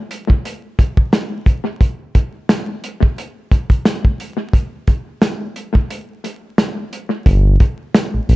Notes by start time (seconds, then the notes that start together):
0.11 closed hi-hat
0.30 kick
0.45 closed hi-hat
0.79 kick, closed hi-hat
0.97 kick
1.13 snare, closed hi-hat
1.46 kick, closed hi-hat
1.81 kick, closed hi-hat
2.15 kick, closed hi-hat
2.49 snare, closed hi-hat
2.84 closed hi-hat
3.03 kick
3.18 closed hi-hat
3.52 kick, closed hi-hat
3.70 kick, closed hi-hat
3.85 snare, closed hi-hat
4.05 kick
4.20 closed hi-hat
4.53 kick, closed hi-hat
4.87 kick, closed hi-hat
5.22 snare, closed hi-hat
5.56 closed hi-hat
5.75 kick
5.91 closed hi-hat
6.24 closed hi-hat
6.58 snare, closed hi-hat
6.93 closed hi-hat
7.26 G1, kick, closed hi-hat
7.60 kick, closed hi-hat
7.95 snare, closed hi-hat
8.14 A#1
8.29 A#1, open hi-hat